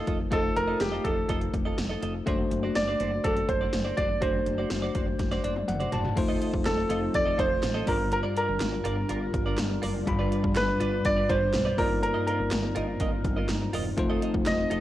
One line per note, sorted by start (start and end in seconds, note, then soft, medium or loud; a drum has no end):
0.00 0.27 A3 medium
0.00 0.27 D#4 medium
0.00 0.28 F4 medium
0.00 2.29 A#4 soft
0.00 0.28 C5 medium
0.00 2.28 D#5 medium
0.07 0.25 F1 medium
0.07 0.19 F4 medium
0.07 0.19 A4 medium
0.07 0.18 D#5 medium
0.07 kick medium
0.07 closed hi-hat medium
0.31 0.49 F1 medium
0.31 2.22 A3 medium
0.31 2.23 D#4 medium
0.31 0.46 F4 medium
0.31 2.23 F4 medium
0.31 0.43 A4 medium
0.31 0.55 A4 medium
0.31 2.24 C5 medium
0.31 0.42 D#5 medium
0.31 kick loud
0.31 closed hi-hat medium
0.43 muted clean electric guitar stroke soft
0.56 0.73 F1 medium
0.56 0.81 A#4 loud
0.56 muted clean electric guitar stroke soft
0.56 closed hi-hat medium
0.67 0.79 F4 soft
0.67 0.79 A4 medium
0.67 0.80 D#5 medium
0.80 0.98 F1 medium
0.80 1.06 G4 medium
0.80 snare loud
0.80 closed hi-hat medium
0.92 1.03 F4 medium
0.92 1.03 A4 medium
0.92 1.04 D#5 medium
1.04 1.22 F1 medium
1.04 1.16 F4 medium
1.04 1.50 A4 medium
1.04 1.16 A4 medium
1.04 1.15 D#5 medium
1.04 kick medium
1.04 closed hi-hat medium
1.16 muted clean electric guitar stroke soft
1.29 1.47 F1 medium
1.29 1.44 F4 medium
1.29 1.41 A4 medium
1.29 1.40 D#5 medium
1.29 kick medium
1.29 closed hi-hat medium
1.41 muted clean electric guitar stroke soft
1.41 closed hi-hat medium
1.53 1.71 F1 medium
1.53 muted clean electric guitar stroke soft
1.53 kick medium
1.53 closed hi-hat medium
1.65 1.77 F4 soft
1.65 1.77 A4 soft
1.65 1.77 D#5 medium
1.78 1.95 F1 medium
1.78 muted clean electric guitar stroke soft
1.78 snare medium
1.78 closed hi-hat medium
1.89 2.00 F4 soft
1.89 2.01 A4 medium
1.89 2.02 D#5 medium
2.02 2.20 F1 medium
2.02 2.17 F4 medium
2.02 2.14 A4 medium
2.02 2.13 D#5 medium
2.02 closed hi-hat medium
2.15 muted clean electric guitar stroke soft
2.26 2.44 F#1 medium
2.26 4.18 A3 medium
2.26 4.18 D4 medium
2.26 2.42 F#4 medium
2.26 4.18 F#4 medium
2.26 2.39 C5 medium
2.26 4.19 C5 medium
2.26 2.37 D5 medium
2.26 kick loud
2.26 closed hi-hat medium
2.39 muted clean electric guitar stroke soft
2.51 2.69 F#1 medium
2.51 muted clean electric guitar stroke soft
2.51 closed hi-hat medium
2.63 2.74 F#4 medium
2.63 2.75 C5 medium
2.63 2.75 D5 medium
2.75 2.93 F#1 medium
2.75 3.26 D5 medium
2.75 muted clean electric guitar stroke soft
2.75 snare loud
2.75 closed hi-hat medium
2.88 2.99 F#4 medium
2.88 2.99 C5 medium
2.88 3.00 D5 medium
3.00 3.18 F#1 medium
3.00 3.12 F#4 medium
3.00 3.12 C5 medium
3.00 3.11 D5 medium
3.00 closed hi-hat medium
3.12 muted clean electric guitar stroke soft
3.24 3.42 F#1 medium
3.24 3.39 F#4 medium
3.24 3.49 A4 medium
3.24 3.36 C5 medium
3.24 3.35 D5 medium
3.24 kick medium
3.24 closed hi-hat medium
3.36 muted clean electric guitar stroke soft
3.36 closed hi-hat soft
3.48 3.66 F#1 medium
3.48 3.99 C5 medium
3.48 muted clean electric guitar stroke soft
3.48 kick medium
3.48 closed hi-hat medium
3.61 3.72 F#4 soft
3.61 3.72 C5 medium
3.61 3.73 D5 medium
3.73 3.91 F#1 loud
3.73 muted clean electric guitar stroke soft
3.73 snare medium
3.73 closed hi-hat medium
3.85 3.96 F#4 medium
3.85 3.97 C5 medium
3.85 3.97 D5 medium
3.97 4.15 F#1 medium
3.97 4.09 F#4 medium
3.97 4.09 C5 medium
3.97 4.20 D5 medium
3.97 4.08 D5 medium
3.97 kick medium
3.97 closed hi-hat medium
4.09 muted clean electric guitar stroke soft
4.21 4.40 F#1 medium
4.21 6.12 A3 medium
4.21 6.13 D4 medium
4.21 4.37 F#4 medium
4.21 6.13 F#4 medium
4.21 5.64 C5 medium
4.21 4.34 C5 medium
4.21 6.14 C5 medium
4.21 4.33 D5 medium
4.21 kick loud
4.21 closed hi-hat medium
4.34 muted clean electric guitar stroke soft
4.46 4.64 F#1 medium
4.46 muted clean electric guitar stroke soft
4.46 closed hi-hat medium
4.58 4.69 F#4 soft
4.58 4.70 C5 soft
4.58 4.70 D5 medium
4.70 4.88 F#1 medium
4.70 muted clean electric guitar stroke soft
4.70 snare loud
4.70 closed hi-hat medium
4.82 4.94 F#4 medium
4.82 4.94 C5 medium
4.82 4.95 D5 medium
4.95 5.13 F#1 medium
4.95 5.07 F#4 medium
4.95 5.07 C5 medium
4.95 5.06 D5 medium
4.95 kick medium
4.95 closed hi-hat medium
5.07 muted clean electric guitar stroke soft
5.19 5.37 F#1 medium
5.19 muted clean electric guitar stroke soft
5.19 kick medium
5.19 snare soft
5.19 closed hi-hat medium
5.32 5.43 F#4 medium
5.32 5.43 C5 medium
5.32 5.44 D5 medium
5.32 snare soft
5.32 closed hi-hat soft
5.44 5.62 F#1 medium
5.44 5.56 F#4 medium
5.44 5.55 C5 medium
5.44 5.67 D5 medium
5.44 5.54 D5 medium
5.44 closed hi-hat medium
5.56 muted clean electric guitar stroke soft
5.56 high tom medium
5.68 5.86 F#1 medium
5.68 5.91 F#5 medium
5.68 muted clean electric guitar stroke soft
5.68 closed hi-hat medium
5.68 mid tom medium
5.80 5.91 F#4 soft
5.80 5.92 C5 soft
5.80 5.92 D5 medium
5.80 closed hi-hat medium
5.92 6.10 F#1 medium
5.92 6.08 F#4 medium
5.92 6.04 C5 medium
5.92 6.03 D5 medium
5.92 6.15 A5 medium
5.92 closed hi-hat medium
5.92 floor tom medium
6.04 muted clean electric guitar stroke soft
6.04 floor tom medium
6.16 6.35 F1 medium
6.16 7.86 F3 medium
6.16 7.84 A3 medium
6.16 7.86 C4 medium
6.16 7.84 D#4 medium
6.16 7.86 D#4 medium
6.16 7.84 F4 medium
6.16 7.86 A4 medium
6.16 7.85 C5 medium
6.16 muted clean electric guitar stroke soft
6.16 kick loud
6.16 closed hi-hat medium
6.16 crash medium
6.28 6.39 F4 medium
6.28 6.40 A4 medium
6.28 6.41 D#5 medium
6.40 6.53 F4 medium
6.40 6.53 A4 medium
6.40 6.52 D#5 medium
6.40 closed hi-hat medium
6.53 6.62 F1 medium
6.53 muted clean electric guitar stroke soft
6.53 kick medium
6.65 6.83 F1 loud
6.65 7.16 A4 medium
6.65 muted clean electric guitar stroke soft
6.65 snare loud
6.65 clap medium
6.65 closed hi-hat medium
6.77 muted clean electric guitar stroke soft
6.89 7.08 F1 loud
6.89 7.05 F4 medium
6.89 7.01 A4 medium
6.89 7.00 D#5 medium
6.89 closed hi-hat medium
7.02 muted clean electric guitar stroke soft
7.13 7.32 F1 medium
7.13 7.38 D5 loud
7.13 muted clean electric guitar stroke soft
7.13 kick medium
7.13 closed hi-hat medium
7.25 7.36 F4 medium
7.25 7.37 A4 medium
7.25 7.38 D#5 medium
7.37 7.56 F1 medium
7.37 7.53 F4 medium
7.37 7.50 A4 medium
7.37 7.89 C5 loud
7.37 7.49 D#5 medium
7.37 kick medium
7.37 closed hi-hat medium
7.50 muted clean electric guitar stroke soft
7.62 7.81 A1 medium
7.62 muted clean electric guitar stroke soft
7.62 snare medium
7.62 clap medium
7.62 closed hi-hat medium
7.74 7.85 F4 medium
7.74 7.87 A4 medium
7.74 7.87 D#5 medium
7.86 8.23 G1 medium
7.86 8.57 G2 medium
7.86 9.78 G3 medium
7.86 11.74 G3 medium
7.86 9.79 D4 medium
7.86 11.74 D4 medium
7.86 7.99 F4 medium
7.86 11.74 F4 medium
7.86 9.79 F4 medium
7.86 10.05 A#4 medium
7.86 7.99 A#4 medium
7.86 8.11 A#4 medium
7.86 9.79 A#4 medium
7.86 7.97 D5 medium
7.86 kick loud
7.86 open hi-hat medium
7.99 muted clean electric guitar stroke soft
8.11 8.18 A#4 medium
8.11 muted clean electric guitar stroke soft
8.11 closed hi-hat medium
8.23 8.34 F4 medium
8.23 8.35 A#4 medium
8.23 8.36 D5 medium
8.35 8.48 F4 medium
8.35 8.48 A#4 medium
8.35 9.79 A#4 medium
8.35 8.47 D5 medium
8.35 closed hi-hat medium
8.49 8.58 G1 medium
8.60 8.79 G1 medium
8.60 muted clean electric guitar stroke soft
8.60 snare loud
8.60 clap loud
8.60 closed hi-hat medium
8.72 muted clean electric guitar stroke soft
8.84 9.03 G1 loud
8.84 9.00 F4 medium
8.84 8.97 A#4 medium
8.84 8.96 D5 medium
8.84 closed hi-hat medium
8.97 muted clean electric guitar stroke soft
9.09 9.28 G1 loud
9.09 9.25 F4 medium
9.09 9.21 A#4 medium
9.09 9.20 D5 medium
9.09 closed hi-hat medium
9.21 muted clean electric guitar stroke soft
9.33 9.52 G1 medium
9.33 muted clean electric guitar stroke soft
9.33 kick medium
9.33 closed hi-hat medium
9.46 9.59 F4 soft
9.46 9.58 A#4 soft
9.46 9.58 D5 medium
9.57 9.76 G1 medium
9.57 snare loud
9.57 clap medium
9.57 closed hi-hat medium
9.70 muted clean electric guitar stroke soft
9.82 10.01 F#1 medium
9.82 9.98 F4 medium
9.82 9.94 A#4 medium
9.82 9.93 D5 medium
9.82 open hi-hat medium
9.94 muted clean electric guitar stroke soft
10.06 10.25 G1 loud
10.06 10.76 G2 medium
10.06 11.74 G3 medium
10.06 11.74 D4 medium
10.06 11.75 F4 medium
10.06 11.76 D5 medium
10.06 11.75 B5 medium
10.06 muted clean electric guitar stroke soft
10.06 kick loud
10.06 closed hi-hat medium
10.19 10.30 F4 medium
10.19 10.30 B4 medium
10.19 10.31 D5 medium
10.31 10.43 F4 medium
10.31 10.43 B4 medium
10.31 10.42 D5 medium
10.31 closed hi-hat medium
10.44 10.53 G1 medium
10.44 muted clean electric guitar stroke medium
10.44 kick medium
10.55 10.74 G1 medium
10.55 11.07 B4 medium
10.55 muted clean electric guitar stroke soft
10.55 snare loud
10.55 clap loud
10.55 closed hi-hat medium
10.68 muted clean electric guitar stroke medium
10.80 10.98 G1 medium
10.80 10.95 F4 medium
10.80 10.92 B4 medium
10.80 10.91 D5 medium
10.80 closed hi-hat medium
10.93 muted clean electric guitar stroke soft
11.05 11.23 G1 medium
11.05 11.30 D5 loud
11.05 muted clean electric guitar stroke soft
11.05 kick medium
11.05 closed hi-hat medium
11.17 11.28 F4 soft
11.17 11.29 B4 medium
11.17 11.29 D5 medium
11.29 11.47 G1 loud
11.29 11.44 F4 medium
11.29 11.41 B4 medium
11.29 11.80 C5 medium
11.29 11.40 D5 medium
11.29 kick medium
11.29 closed hi-hat medium
11.41 muted clean electric guitar stroke soft
11.53 11.71 B1 medium
11.53 muted clean electric guitar stroke soft
11.53 snare loud
11.53 clap medium
11.53 closed hi-hat medium
11.65 11.76 F4 medium
11.65 11.78 B4 medium
11.65 11.78 D5 medium
11.77 12.13 G1 medium
11.77 12.48 G2 medium
11.77 13.69 A#3 medium
11.77 13.95 A#3 medium
11.77 14.80 C4 medium
11.77 13.69 D#4 medium
11.77 14.80 D#4 medium
11.77 11.90 F4 medium
11.77 13.70 F4 medium
11.77 11.89 A#4 medium
11.77 12.01 A#4 medium
11.77 13.70 D5 medium
11.77 11.88 D#5 medium
11.77 kick loud
11.77 open hi-hat medium
11.90 muted clean electric guitar stroke soft
12.02 12.25 A#4 medium
12.02 muted clean electric guitar stroke soft
12.02 closed hi-hat medium
12.14 12.25 F4 medium
12.14 12.26 A#4 medium
12.14 12.27 D#5 medium
12.27 12.38 F4 medium
12.27 13.69 A#4 medium
12.27 12.39 A#4 medium
12.27 12.38 D#5 medium
12.27 closed hi-hat medium
12.39 12.48 G1 medium
12.39 muted clean electric guitar stroke medium
12.51 12.69 G1 medium
12.51 muted clean electric guitar stroke soft
12.51 snare loud
12.51 clap loud
12.51 closed hi-hat medium
12.63 muted clean electric guitar stroke soft
12.75 12.94 G1 medium
12.75 12.90 F4 medium
12.75 12.87 A#4 medium
12.75 12.86 D#5 medium
12.75 closed hi-hat medium
12.88 muted clean electric guitar stroke soft
13.00 13.18 G1 loud
13.00 13.15 F4 medium
13.00 13.12 A#4 medium
13.00 13.11 D#5 medium
13.00 kick medium
13.00 closed hi-hat medium
13.12 muted clean electric guitar stroke soft
13.24 13.42 G1 medium
13.24 muted clean electric guitar stroke soft
13.24 kick medium
13.24 closed hi-hat medium
13.36 13.49 F4 soft
13.36 13.49 A#4 medium
13.36 13.48 D#5 medium
13.48 13.66 G1 medium
13.48 snare medium
13.48 clap medium
13.48 closed hi-hat medium
13.61 muted clean electric guitar stroke soft
13.73 13.91 E1 medium
13.73 13.88 F4 medium
13.73 13.85 A#4 medium
13.73 13.84 D#5 medium
13.73 open hi-hat medium
13.85 muted clean electric guitar stroke soft
13.97 14.15 F1 medium
13.97 14.80 F3 medium
13.97 14.80 A3 medium
13.97 14.80 D#4 medium
13.97 14.80 F4 medium
13.97 14.80 A4 medium
13.97 14.80 C5 medium
13.97 muted clean electric guitar stroke soft
13.97 kick loud
13.97 closed hi-hat medium
14.10 14.20 F4 medium
14.10 14.21 A4 medium
14.10 14.22 D#5 medium
14.22 14.34 F4 medium
14.22 14.33 A4 medium
14.22 14.33 D#5 medium
14.22 closed hi-hat medium
14.34 14.43 F1 medium
14.34 muted clean electric guitar stroke soft
14.34 kick medium
14.46 14.64 F1 loud
14.46 14.80 D#5 medium
14.46 muted clean electric guitar stroke soft
14.46 snare loud
14.46 clap loud
14.46 closed hi-hat medium
14.58 muted clean electric guitar stroke soft
14.70 14.80 F1 medium
14.70 14.80 F4 medium
14.70 14.80 A4 medium
14.70 14.80 D#5 medium
14.70 closed hi-hat medium